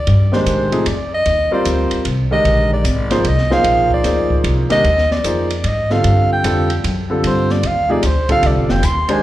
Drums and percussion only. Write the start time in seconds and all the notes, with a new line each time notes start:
0.07 ride
0.33 snare
0.46 hi-hat pedal, ride
0.72 ride
0.86 ride
1.26 ride
1.65 hi-hat pedal, ride
1.91 ride
2.05 ride
2.45 ride
2.85 hi-hat pedal, ride
3.11 snare, ride
3.25 ride
3.38 snare
3.51 snare
3.64 ride
3.90 kick
4.04 snare, hi-hat pedal, ride
4.30 kick
4.44 ride
4.70 snare, ride
4.84 ride
4.98 snare
5.11 snare
5.24 hi-hat pedal, ride
5.50 ride
5.64 ride
5.90 snare
6.04 ride
6.44 hi-hat pedal, ride
6.70 ride
6.84 ride
7.24 ride
7.50 snare
7.63 ride
8.03 hi-hat pedal, ride
8.29 kick, ride
8.43 ride
8.69 snare
8.83 hi-hat pedal, ride
9.09 ride